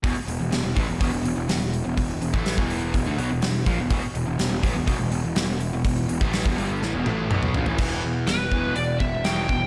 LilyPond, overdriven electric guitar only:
\new Staff \with { instrumentName = "Overdriven electric guitar" } { \clef bass \time 4/4 \key e \minor \tempo 4 = 124 <e, b,>16 r16 <e, b,>16 <e, b,>16 <e, b,>16 <e, b,>16 <a, e>16 <e, b,>16 <e, b,>16 <e, b,>16 <e, b,>16 <e, b,>16 <e, b,>16 <e, b,>8 <e, b,>16 | <e, b,>8 <e, b,>16 <a, e a>8 <e, b, e>8. <e, b,>16 <d a>16 <b, fis>16 <e, b,>16 <e, b,>8 <ais, f>16 <e, b,>16 | <e, b,>16 r16 <e, b,>16 <e, b,>16 <e, b,>16 <e, b,>16 <a, e>16 <e, b,>16 <e, b,>16 <e, b,>16 <e, b,>16 <e, b,>16 <e, b,>16 <e, b,>8 <e, b,>16 | <e, b,>8 <e, b,>16 <a, e a>8 <e, b,>16 <g, d g>8 <a, e>16 <e, b,>16 <a, e a>8 <b, fis b>8 <ais, f>16 <a, e>16 |
<e, b, e>8 <e, b,>8 <e, b,>8 <e, b, e>8 <e, b,>8 <e, b,>8 <e, b, e>8 <e, b,>8 | }